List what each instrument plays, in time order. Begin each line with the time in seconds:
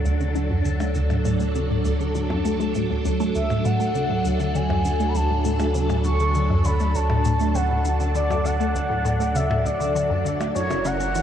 Already playing: sub bass D2, string machine F#3 D4 A4
0.05 synth arpeggio sound D2, shaker
0.20 synth arpeggio sound D3, shaker
0.35 synth arpeggio sound D3, shaker
0.50 synth arpeggio sound F#2
0.65 synth arpeggio sound D3, shaker
0.80 synth arpeggio sound A3, percussion blips, shaker
0.95 synth arpeggio sound D2, shaker
1.10 synth arpeggio sound A2, percussion blips, shaker
1.25 synth arpeggio sound A2, shaker
1.40 synth arpeggio sound A3, shaker
1.55 synth arpeggio sound C#3, shaker
1.70 synth arpeggio sound A2
1.85 synth arpeggio sound D2, shaker
2.00 synth arpeggio sound D3, shaker
2.15 synth arpeggio sound D3, shaker
2.30 synth arpeggio sound F#2, percussion blips
2.45 synth arpeggio sound A3, shaker
2.60 synth arpeggio sound A3, shaker
2.75 synth arpeggio sound A2, shaker
2.90 synth arpeggio sound D2
3.05 synth arpeggio sound D2, shaker
3.20 synth arpeggio sound A3, shaker
3.35 sub bass D2, synth arpeggio sound D2, analog synth lead E5, shaker
3.50 synth arpeggio sound A2, percussion blips, shaker
3.65 synth arpeggio sound A2, analog synth lead F#5, shaker
3.80 synth arpeggio sound A3, shaker
3.95 synth arpeggio sound C#3, shaker
4.10 synth arpeggio sound A2
4.25 synth arpeggio sound D2, shaker
4.40 synth arpeggio sound D3, shaker
4.55 synth arpeggio sound D3, analog synth lead G#5, shaker
4.70 synth arpeggio sound F#2, percussion blips
4.85 synth arpeggio sound D3, shaker
5.00 synth arpeggio sound A3, shaker
5.08 analog synth lead B5
5.15 synth arpeggio sound D2, analog synth lead A5, shaker
5.30 synth arpeggio sound A2
5.45 synth arpeggio sound A2, shaker
5.60 synth arpeggio sound A3, percussion blips, shaker
5.75 synth arpeggio sound C#3, shaker
5.90 synth arpeggio sound A2, percussion blips, shaker
6.04 synth arpeggio sound D2, analog synth lead C#6, shaker
6.19 synth arpeggio sound D3, shaker
6.35 synth arpeggio sound D3, shaker
6.50 synth arpeggio sound F#2
6.64 synth arpeggio sound D3, analog synth lead B5, shaker
6.80 synth arpeggio sound A3, shaker
6.95 synth arpeggio sound D2, analog synth lead A5, shaker
7.10 synth arpeggio sound A2, percussion blips
7.25 synth arpeggio sound A2, shaker
7.40 synth arpeggio sound A3, shaker
7.55 synth arpeggio sound C#3, analog synth lead F#5, shaker
7.70 synth arpeggio sound A2
7.85 synth arpeggio sound D2, shaker
8.00 synth arpeggio sound D3, shaker
8.15 synth arpeggio sound D3, analog synth lead D5, shaker
8.30 synth arpeggio sound F#2, percussion blips, shaker
8.45 synth arpeggio sound D3, analog synth lead F#5, shaker
8.60 synth arpeggio sound A3, shaker
8.75 synth arpeggio sound D2, shaker
8.90 synth arpeggio sound A2
9.05 synth arpeggio sound A2, shaker
9.20 synth arpeggio sound A3, shaker
9.35 synth arpeggio sound C#3, analog synth lead E5, shaker
9.50 synth arpeggio sound A2, percussion blips
9.65 synth arpeggio sound D2, analog synth lead D5, shaker
9.80 synth arpeggio sound D3, shaker
9.95 synth arpeggio sound D3, shaker
10.10 synth arpeggio sound F#2
10.25 synth arpeggio sound D3, shaker
10.40 synth arpeggio sound A3, percussion blips, shaker
10.55 sub bass F#1, synth arpeggio sound F#2, string machine F#3 E4 A#4, analog synth lead C#5, shaker
10.70 synth arpeggio sound C#3, percussion blips, shaker
10.85 synth arpeggio sound C#3, analog synth lead F#5, shaker
11.00 synth arpeggio sound C#4, shaker
11.15 synth arpeggio sound E3, shaker